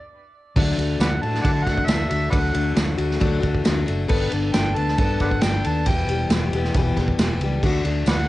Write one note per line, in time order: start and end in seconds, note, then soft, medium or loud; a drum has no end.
0.56 0.74 D2 medium
0.56 0.78 D3 medium
0.56 0.78 F#3 medium
0.56 0.78 A3 medium
0.56 0.77 D4 loud
0.56 0.77 F#4 loud
0.56 kick loud
0.56 crash loud
0.77 0.96 D2 medium
0.77 1.00 A3 soft
0.77 1.00 D4 soft
0.77 1.00 F#4 medium
0.77 ride medium
1.00 1.18 D2 medium
1.00 1.23 F#3 medium
1.00 1.23 A3 medium
1.00 1.24 D4 medium
1.00 1.22 F#4 medium
1.00 1.08 B4 medium
1.00 1.10 D5 medium
1.00 1.21 F#5 medium
1.00 snare loud
1.00 ride medium
1.00 tambourine loud
1.22 1.41 A2 medium
1.22 1.45 D4 medium
1.22 1.45 F#4 medium
1.22 1.42 A5 loud
1.22 ride medium
1.26 1.44 A3 soft
1.35 snare soft
1.42 1.62 D3 loud
1.42 1.67 D3 medium
1.42 1.67 F#3 medium
1.42 1.67 A3 medium
1.42 1.67 D4 medium
1.42 1.66 F#4 loud
1.42 1.51 D5 medium
1.42 1.51 F#5 medium
1.42 1.65 A5 loud
1.42 kick loud
1.42 ride medium
1.63 1.84 D2 medium
1.63 1.88 F#4 medium
1.63 1.88 F#5 loud
1.63 kick medium
1.63 ride medium
1.68 1.87 A3 soft
1.68 1.87 D4 soft
1.68 snare soft
1.78 kick medium
1.86 2.06 D2 medium
1.86 2.10 F#3 medium
1.86 2.10 A3 medium
1.86 2.10 D4 medium
1.86 2.08 F#4 medium
1.86 2.08 E5 medium
1.86 snare loud
1.86 ride loud
1.86 tambourine loud
2.09 2.29 D2 medium
2.09 2.31 A3 soft
2.09 2.31 D4 soft
2.09 2.32 F#4 medium
2.09 2.30 E5 medium
2.09 ride medium
2.31 2.50 D2 loud
2.31 2.54 D3 medium
2.31 2.54 F#3 medium
2.31 2.55 A3 medium
2.31 2.54 D4 medium
2.31 2.52 F#4 medium
2.31 2.38 B4 medium
2.31 2.37 D5 medium
2.31 2.73 F#5 medium
2.31 kick loud
2.31 ride loud
2.53 2.73 D2 medium
2.53 2.76 A3 soft
2.53 2.76 D4 soft
2.53 2.76 F#4 medium
2.53 ride medium
2.75 2.95 D2 loud
2.75 2.98 F#3 medium
2.75 2.99 A3 medium
2.75 2.98 D4 medium
2.75 2.96 F#4 medium
2.75 snare loud
2.75 ride loud
2.75 tambourine loud
2.98 3.16 D2 medium
2.98 3.20 A3 soft
2.98 3.19 D4 medium
2.98 3.19 F#4 medium
2.98 ride medium
3.11 snare soft
3.20 3.39 D2 loud
3.20 3.43 D3 medium
3.20 3.43 F#3 medium
3.20 3.42 A3 loud
3.20 3.41 D4 loud
3.20 3.39 F#4 loud
3.20 kick loud
3.20 ride medium
3.40 3.61 D2 loud
3.40 3.63 A3 medium
3.40 3.64 D4 medium
3.40 3.64 F#4 medium
3.40 kick medium
3.40 ride medium
3.55 kick medium
3.64 3.84 D2 loud
3.64 3.87 F#3 medium
3.64 3.87 A3 medium
3.64 3.85 D4 medium
3.64 3.85 F#4 medium
3.64 snare loud
3.64 ride loud
3.64 tambourine loud
3.86 4.06 F#1 loud
3.86 4.08 A3 soft
3.86 4.08 D4 medium
3.86 4.08 F#4 medium
3.86 ride medium
4.08 4.27 G1 medium
4.08 4.31 G3 medium
4.08 4.31 B3 medium
4.08 4.31 D4 medium
4.08 4.30 A4 loud
4.08 kick loud
4.08 crash loud
4.31 4.50 G1 medium
4.31 4.52 B3 soft
4.31 4.53 D4 medium
4.31 4.53 A4 medium
4.31 ride medium
4.52 4.73 G1 medium
4.52 4.75 G3 medium
4.52 4.76 B3 medium
4.52 4.75 D4 medium
4.52 4.73 A4 medium
4.52 4.76 G5 loud
4.52 snare loud
4.52 ride loud
4.52 tambourine loud
4.74 4.95 D2 medium
4.74 4.97 B3 soft
4.74 4.98 D4 medium
4.74 4.97 A4 medium
4.74 4.97 A5 loud
4.74 ride medium
4.88 snare soft
4.98 5.16 G2 loud
4.98 5.20 G3 medium
4.98 5.20 B3 medium
4.98 5.21 D4 medium
4.98 5.20 A4 medium
4.98 5.19 A5 loud
4.98 kick loud
4.98 ride medium
5.20 5.39 G1 medium
5.20 5.41 B3 soft
5.20 5.42 D4 soft
5.20 5.43 A4 medium
5.20 5.28 B4 medium
5.20 5.29 D5 medium
5.20 5.44 F#5 loud
5.20 kick medium
5.20 ride medium
5.31 kick medium
5.41 5.61 G1 medium
5.41 5.64 G3 medium
5.41 5.65 B3 medium
5.41 5.65 D4 medium
5.41 5.63 A4 medium
5.41 5.68 G5 medium
5.41 snare loud
5.41 ride loud
5.41 tambourine loud
5.64 5.83 D#2 medium
5.64 5.86 B3 soft
5.64 5.87 D4 soft
5.64 5.87 A4 medium
5.64 5.90 A5 medium
5.64 ride medium
5.86 6.04 E1 medium
5.86 6.08 E2 medium
5.86 6.09 B2 medium
5.86 6.08 E3 medium
5.86 6.09 G3 medium
5.86 6.09 B3 medium
5.86 6.09 G4 medium
5.86 6.32 G5 medium
5.86 kick loud
5.86 ride loud
6.07 6.26 E1 medium
6.07 6.31 B3 soft
6.07 6.31 G4 medium
6.07 ride medium
6.12 6.31 E3 soft
6.12 6.31 G3 soft
6.29 6.48 E1 loud
6.29 6.54 E3 medium
6.29 6.54 G3 medium
6.29 snare loud
6.29 ride loud
6.29 tambourine loud
6.34 6.54 B3 medium
6.34 6.54 G4 medium
6.53 6.71 E1 medium
6.53 6.76 B3 medium
6.53 6.76 G4 medium
6.53 ride medium
6.57 6.75 E3 medium
6.57 6.76 G3 medium
6.64 snare soft
6.74 6.93 E1 loud
6.74 6.98 E2 medium
6.74 6.98 B2 medium
6.74 6.98 E3 loud
6.74 6.98 G3 medium
6.74 6.98 B3 loud
6.74 kick loud
6.74 ride loud
6.79 6.97 G4 loud
6.97 7.15 E1 medium
6.97 7.20 G3 medium
6.97 7.20 B3 medium
6.97 7.20 G4 medium
6.97 kick medium
6.97 snare soft
6.97 ride medium
7.01 7.19 E3 medium
7.08 kick medium
7.18 7.37 E1 medium
7.18 7.42 E3 medium
7.18 7.42 G3 medium
7.18 7.43 B3 medium
7.18 snare loud
7.18 ride loud
7.18 tambourine loud
7.23 7.42 G4 medium
7.40 7.58 C#2 medium
7.40 7.64 G4 medium
7.40 ride medium
7.44 7.63 E3 soft
7.44 7.64 G3 medium
7.44 7.65 B3 medium
7.63 7.81 D2 loud
7.63 7.85 D3 medium
7.63 7.86 A3 medium
7.63 7.85 D4 medium
7.63 7.84 F#4 medium
7.63 kick loud
7.63 crash medium
7.84 8.03 D2 medium
7.84 8.07 A3 soft
7.84 8.08 D4 soft
7.84 8.07 F#4 medium
7.84 ride medium
8.06 8.25 D2 medium
8.06 8.28 D3 medium
8.06 8.28 A3 medium
8.06 8.28 D4 medium
8.06 8.17 B4 medium
8.06 8.16 D5 medium
8.06 8.28 F#5 medium
8.06 snare loud
8.06 ride loud
8.06 tambourine loud
8.10 8.26 F#4 medium